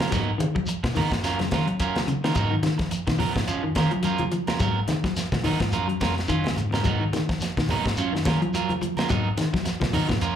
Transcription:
0.00 C#4 F4 A#4, snare, closed hi-hat, high conga
0.11 G#2 F#3 B3 D#4 A#4, kick, snare, closed hi-hat, low conga, shekere
0.38 D#3, muted clean electric guitar stroke, closed hi-hat, high conga, shekere
0.55 F3 F#3, muted clean electric guitar stroke, kick
0.66 muted clean electric guitar stroke, muted fingered electric bass stroke, closed hi-hat, shekere
0.83 B2, muted clean electric guitar stroke, kick, snare, high conga
0.95 D#3 B3 D#4 A#4, muted clean electric guitar stroke, open hi-hat, high conga, low conga, shekere
1.11 G#2, muted clean electric guitar stroke, kick, snare, closed hi-hat, low conga
1.23 F#2 F#3 C#4 F4 A#4, snare, closed hi-hat, shekere
1.39 F#3, muted clean electric guitar stroke, snare, closed hi-hat, high conga
1.51 D#3 F#3 C#4 F4 A#4, kick, snare, closed hi-hat, high conga, shekere
1.67 F#3, muted clean electric guitar stroke, closed hi-hat
1.80 F#3 C#4 F4 A#4, kick, closed hi-hat, shekere
1.95 snare, closed hi-hat, high conga
2.08 C#3, muted clean electric guitar stroke, closed hi-hat, high conga, shekere
2.24 D#3 C#4 F4 A#4, snare
2.35 G#2 F#3 B3 D#4 A#4, muted clean electric guitar stroke, kick, closed hi-hat, low conga, shekere
2.51 D#3
2.63 D#3, muted clean electric guitar stroke, snare, closed hi-hat, high conga, shekere
2.78 F3, muted clean electric guitar stroke, kick, snare, closed hi-hat
2.91 muted clean electric guitar stroke, muted fingered electric bass stroke, closed hi-hat, shekere
3.07 B2 D#3, muted clean electric guitar stroke, kick, snare, closed hi-hat
3.19 F3 F#3 B3 A#4, muted clean electric guitar stroke, open hi-hat, high conga, low conga, shekere
3.34 G#2, muted clean electric guitar stroke, kick, snare
3.47 F#2 F3 C#4 F4, muted clean electric guitar stroke, closed hi-hat, shekere
3.63 D#3, muted clean electric guitar stroke
3.75 D#3 F3 C#4 F4 A#4, kick, snare, closed hi-hat, high conga, shekere
3.91 F3 F#3, muted clean electric guitar stroke, closed hi-hat
4.03 F3 F#3 C#4 F4 A#4, closed hi-hat, shekere
4.18 F3, closed hi-hat, high conga
4.32 F3, muted clean electric guitar stroke, closed hi-hat, shekere
4.47 C#4 F4 A#4, snare, closed hi-hat, high conga
4.59 G#2 F#3 B3 A#4, muted clean electric guitar stroke, kick, closed hi-hat, low conga, shekere
4.88 D#3, muted clean electric guitar stroke, snare, closed hi-hat, high conga, shekere
5.04 F3 F#3, muted clean electric guitar stroke, kick, snare
5.16 muted clean electric guitar stroke, muted fingered electric bass stroke, snare, closed hi-hat, shekere
5.32 B2 F3, muted clean electric guitar stroke, kick, snare, high conga
5.44 D#3 F#3 B3 D#4 A#4, open hi-hat, high conga, low conga, shekere
5.60 G#2 F3, muted clean electric guitar stroke, kick, snare, closed hi-hat
5.72 F#2 F#3 F4 A#4, muted clean electric guitar stroke, closed hi-hat, shekere
5.88 F#3, muted clean electric guitar stroke, closed hi-hat
6.01 F2 F#3 C#4 F4 A#4, kick, snare, closed hi-hat, high conga, shekere
6.16 muted clean electric guitar stroke, snare, closed hi-hat
6.28 F#2 D#3 F#3 C#4 F4, muted clean electric guitar stroke, kick, closed hi-hat, shekere
6.44 snare, closed hi-hat, high conga
6.56 G#2, muted clean electric guitar stroke, closed hi-hat, high conga, shekere
6.72 C#4 A#4, muted clean electric guitar stroke, snare, high conga
6.83 G#2 F#3 B3 D#4 A#4, kick, closed hi-hat, low conga, shekere
7.00 D#3
7.13 D#3, muted clean electric guitar stroke, snare, closed hi-hat, high conga, shekere
7.29 F3, muted clean electric guitar stroke, kick, snare, closed hi-hat
7.40 muted fingered electric bass stroke, muted clean electric guitar stroke, snare, closed hi-hat, shekere
7.57 B2 D#3, muted clean electric guitar stroke, kick, snare, closed hi-hat
7.69 F#3 B3 D#4 A#4, muted clean electric guitar stroke, open hi-hat, high conga, low conga, shekere
7.86 G#2, muted clean electric guitar stroke, kick, snare
7.97 F#2 F#3 C#4 F4, muted clean electric guitar stroke, closed hi-hat, shekere
8.13 D#3, muted clean electric guitar stroke, snare
8.25 D#3 F#3 C#4 F4 A#4, kick, snare, closed hi-hat, high conga, shekere
8.41 F3 F#3, muted clean electric guitar stroke, closed hi-hat
8.54 F#3 F4 A#4, closed hi-hat, shekere
8.69 F3, closed hi-hat, high conga
8.81 F3, muted clean electric guitar stroke, closed hi-hat, high conga, shekere
8.97 C#4 F4 A#4, snare, closed hi-hat, high conga
9.09 G#2 F#3 B3 D#4 A#4, kick, closed hi-hat, low conga, shekere
9.37 D#3, muted clean electric guitar stroke, snare, closed hi-hat, high conga, shekere
9.53 F3 F#3, muted clean electric guitar stroke, kick, snare
9.64 muted clean electric guitar stroke, muted fingered electric bass stroke, snare, closed hi-hat, shekere
9.80 B2 F3, muted clean electric guitar stroke, kick, snare, high conga
9.93 D#3 F#3 B3 D#4 A#4, open hi-hat, high conga, low conga, shekere
10.09 G#2 F3, muted clean electric guitar stroke, kick, snare, closed hi-hat, low conga
10.21 F#2 F3 C#4 F4 A#4, closed hi-hat, shekere

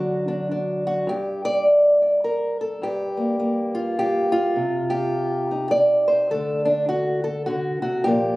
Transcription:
Already playing: D3 F#3 D4 F#4
0.28 D4
0.51 D4
0.87 F#4
1.07 G2 G4
1.45 D5
2.02 D5
2.24 A#4
2.61 A4
2.82 G2 G4
3.17 A#3
3.40 A#3
3.75 F4
3.99 G4
4.32 F4
4.56 C3
4.90 G4
5.51 D#4
5.71 D5
6.08 C5
6.31 D3 A3 D4 A4
6.65 D4
6.89 F#4
7.24 A4
7.46 D3 F#4
7.82 C3 F#4
8.04 A#2 F3 A#3 G4
8.08 F4

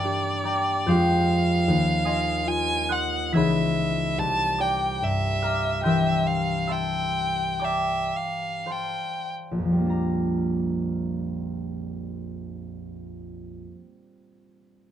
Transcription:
Already playing: G2 A#3 A#4 D5 E5 G5 A#5 D6 G6
0.04 D4 G4
0.44 D5 G5 A#5 D6
0.86 F2 G#3 C4 F4 F5 G5 C6 D#6 G6
0.91 G4
1.68 D#2
2.05 D#5 G#5 C6 D#6
2.46 F4 G#5
2.89 F#5 C6 D#6 F#6
3.32 C#2 E3 D#4 G#4 E5 E6 G#6 B6
3.37 B5
4.18 C2 A5
4.58 D5 G5 A#5 D6
5.02 G2 E5
5.42 F5 A#5 D6 F6
5.81 E3 G5 C6 G6
5.85 D4 G4 A#4 E5 E6
6.27 F5
6.67 E5 A5 C6 E6
6.72 G5
7.59 D5 G5 A#5 D6
7.64 E5
8.16 F5
8.66 C5 F5 C6
8.70 G5 A5
9.51 A#1
9.59 F2
9.65 F3
9.72 G3
9.78 A#3
9.85 D4
9.90 A#5

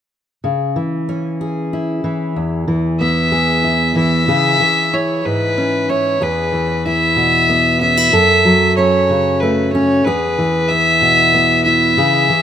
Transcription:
0.44 C#3
0.76 E3
1.09 C#4
1.41 G#4
1.73 E4
2.04 E3
2.36 E2
2.68 E3
3.00 B3 E5
3.32 G#4
3.64 E4
3.96 E3 E5
4.28 C#3 G#4
4.60 E3
4.93 E4 C#5
5.25 G#2 B4
5.58 C#4
5.89 E4 C#5
6.21 E2 G#4 B4
6.52 E3
6.86 E4 E5
7.16 B2
7.49 B3
7.81 C#4 E5
7.97 E4
8.13 F#2 A4
8.45 F#3
8.76 C#4 C#5
9.10 C#3
9.40 A3 B4
9.73 C#4 C#5
10.05 E2 G#4 B4
10.38 E3
10.69 E4 E5
11.01 B2
11.34 B3
11.64 E4 E5
11.97 C#3 G#4
12.29 E3

